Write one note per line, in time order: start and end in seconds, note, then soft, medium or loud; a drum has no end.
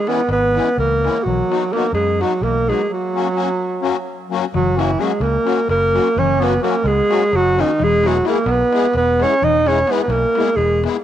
0.00 0.10 G#4 medium
0.07 0.20 E3 medium
0.07 0.20 G#3 medium
0.07 0.29 B3 medium
0.07 0.20 C#4 medium
0.07 0.21 E4 medium
0.07 0.29 B4 medium
0.07 darbuka tek medium
0.28 0.58 G#1 medium
0.28 0.75 B3 medium
0.28 0.76 B4 loud
0.28 darbuka tek medium
0.54 0.68 E3 medium
0.54 0.68 G#3 medium
0.54 0.69 C#4 medium
0.54 0.69 E4 medium
0.54 darbuka tek medium
0.66 darbuka tek soft
0.78 1.07 C#2 medium
0.78 1.28 A#3 medium
0.78 1.25 A#4 loud
0.78 darbuka tek medium
0.78 darbuka dum medium
1.04 1.17 E3 medium
1.04 1.17 G#3 medium
1.04 1.17 C#4 medium
1.04 1.18 E4 medium
1.04 darbuka tek medium
1.23 1.40 B1 medium
1.23 1.75 F#3 medium
1.23 1.74 F#4 medium
1.23 darbuka dum medium
1.41 darbuka tek soft
1.50 1.63 F#3 medium
1.50 1.63 B3 medium
1.50 1.64 D#4 medium
1.50 1.64 F#4 medium
1.50 darbuka tek medium
1.63 darbuka tek soft
1.72 1.86 F#3 medium
1.72 1.93 A#3 medium
1.72 1.86 B3 medium
1.72 1.87 D#4 medium
1.72 1.87 F#4 medium
1.72 1.93 A#4 medium
1.72 darbuka tek medium
1.93 2.22 F#2 loud
1.93 2.22 G#3 medium
1.93 2.23 G#4 loud
1.93 darbuka tek medium
2.20 2.33 F#3 medium
2.20 2.45 F#3 medium
2.20 2.33 B3 medium
2.20 2.33 D#4 medium
2.20 2.34 F#4 medium
2.20 2.44 F#4 medium
2.20 darbuka tek medium
2.32 darbuka tek soft
2.41 2.70 B1 medium
2.41 2.70 A#3 medium
2.41 2.70 A#4 loud
2.41 darbuka tek medium
2.41 darbuka dum medium
2.67 2.81 F#3 medium
2.67 2.89 G#3 medium
2.67 2.81 B3 medium
2.67 2.82 D#4 medium
2.67 2.82 F#4 medium
2.67 2.91 G#4 medium
2.67 darbuka tek medium
2.89 4.28 F#3 medium
2.89 4.30 F#4 medium
3.14 3.27 F#3 medium
3.14 3.28 A#3 soft
3.14 3.28 C#4 medium
3.14 3.28 F#4 medium
3.35 3.48 F#3 medium
3.35 3.49 A#3 medium
3.35 3.49 C#4 medium
3.35 3.49 F#4 medium
3.81 3.96 F#3 medium
3.81 3.96 A#3 medium
3.81 3.96 C#4 medium
3.81 3.97 F#4 medium
4.30 4.44 F#3 medium
4.30 4.45 A#3 medium
4.30 4.45 C#4 medium
4.30 4.45 F#4 medium
4.53 4.95 F#1 medium
4.53 4.78 F#3 medium
4.53 4.81 F#4 loud
4.53 darbuka dum loud
4.67 darbuka tek soft
4.77 5.02 E3 medium
4.77 4.90 F#3 medium
4.77 4.90 A#3 medium
4.77 4.91 C#4 medium
4.77 5.02 E4 medium
4.77 4.91 F#4 medium
4.77 darbuka tek medium
4.91 darbuka tek soft
4.97 5.11 F#3 medium
4.97 5.22 G#3 medium
4.97 5.12 A#3 medium
4.97 5.12 C#4 medium
4.97 5.12 F#4 medium
4.97 5.24 G#4 medium
4.97 darbuka tek medium
5.20 5.36 C#2 loud
5.20 5.69 A#3 medium
5.20 5.70 A#4 loud
5.20 darbuka tek medium
5.35 darbuka tek soft
5.44 5.59 F#3 medium
5.44 5.59 A#3 medium
5.44 5.60 C#4 medium
5.44 5.60 F#4 medium
5.44 darbuka tek medium
5.69 5.98 F#1 medium
5.69 6.21 A#3 medium
5.69 6.20 A#4 loud
5.69 darbuka tek medium
5.93 6.08 F#3 medium
5.93 6.08 A#3 medium
5.93 6.08 C#4 medium
5.93 6.08 F#4 medium
5.93 darbuka tek medium
6.16 6.57 F#1 loud
6.16 6.42 C#4 loud
6.16 6.45 C#5 loud
6.16 darbuka dum loud
6.31 darbuka tek soft
6.39 6.53 F#3 medium
6.39 6.54 A#3 medium
6.39 6.62 B3 medium
6.39 6.54 C#4 medium
6.39 6.54 F#4 medium
6.39 darbuka tek medium
6.44 6.63 B4 loud
6.54 darbuka tek soft
6.61 6.75 F#3 medium
6.61 6.75 A#3 medium
6.61 6.85 A#3 medium
6.61 6.75 C#4 medium
6.61 6.76 F#4 medium
6.61 6.89 A#4 loud
6.61 darbuka tek medium
6.84 7.00 C#2 loud
6.84 7.34 G#3 medium
6.84 7.38 G#4 loud
6.84 darbuka tek medium
7.09 7.23 F#3 medium
7.09 7.23 A#3 medium
7.09 7.23 C#4 medium
7.09 7.24 F#4 medium
7.09 darbuka tek medium
7.33 7.61 F#1 loud
7.33 7.60 F#3 medium
7.33 7.62 F#4 loud
7.33 darbuka tek medium
7.56 7.83 D#3 medium
7.56 7.70 F#3 medium
7.56 7.70 A#3 medium
7.56 7.71 C#4 medium
7.56 7.71 F#4 medium
7.56 darbuka tek medium
7.60 7.85 D#4 loud
7.79 8.20 E1 loud
7.79 8.07 G#3 loud
7.79 darbuka dum loud
7.84 8.08 G#4 loud
7.92 darbuka tek soft
8.03 8.26 F#3 medium
8.03 8.17 G#3 medium
8.03 8.17 B3 medium
8.03 8.17 E4 medium
8.03 8.27 F#4 loud
8.03 8.18 G#4 medium
8.03 darbuka tek medium
8.14 darbuka tek soft
8.24 8.38 G#3 medium
8.24 8.48 A#3 medium
8.24 8.38 B3 medium
8.24 8.38 E4 medium
8.24 8.39 G#4 medium
8.24 darbuka tek medium
8.29 8.52 A#4 loud
8.46 8.62 B1 loud
8.46 8.94 B3 loud
8.46 darbuka tek medium
8.51 8.97 B4 loud
8.60 darbuka tek soft
8.72 8.85 G#3 medium
8.72 8.86 B3 medium
8.72 8.86 E4 medium
8.72 8.87 G#4 medium
8.72 darbuka tek medium
8.94 9.23 E1 loud
8.94 9.25 B3 loud
8.94 9.24 B4 loud
8.94 darbuka tek medium
9.20 9.33 G#3 medium
9.20 9.33 B3 medium
9.20 9.45 C#4 medium
9.20 9.34 E4 medium
9.20 9.34 G#4 medium
9.20 9.46 C#5 loud
9.20 darbuka tek medium
9.42 9.82 E1 medium
9.42 9.68 D#4 loud
9.42 9.69 D#5 loud
9.42 darbuka dum loud
9.66 9.79 G#3 medium
9.66 9.79 B3 medium
9.66 9.89 C#4 medium
9.66 9.79 E4 medium
9.66 9.79 G#4 medium
9.66 9.93 C#5 loud
9.66 darbuka tek medium
9.77 darbuka tek soft
9.87 10.01 G#3 medium
9.87 10.00 B3 medium
9.87 10.01 B3 medium
9.87 10.01 E4 medium
9.87 10.02 G#4 medium
9.87 10.02 B4 loud
9.87 darbuka tek medium
9.99 10.10 B3 medium
9.99 10.13 B4 medium
9.99 darbuka tek soft
10.08 10.24 B1 loud
10.08 10.58 A#3 medium
10.08 10.58 A#4 loud
10.08 darbuka tek medium
10.35 10.49 G#3 medium
10.35 10.49 B3 medium
10.35 10.49 E4 medium
10.35 10.50 G#4 medium
10.35 darbuka tek medium
10.47 darbuka tek soft
10.56 10.85 E1 loud
10.56 10.82 G#3 medium
10.56 10.82 G#4 loud
10.56 darbuka tek medium
10.70 darbuka tek soft
10.84 10.96 G#3 medium
10.84 10.96 B3 medium
10.84 10.96 E4 medium
10.84 10.97 G#4 medium
10.84 darbuka tek medium
10.94 darbuka tek soft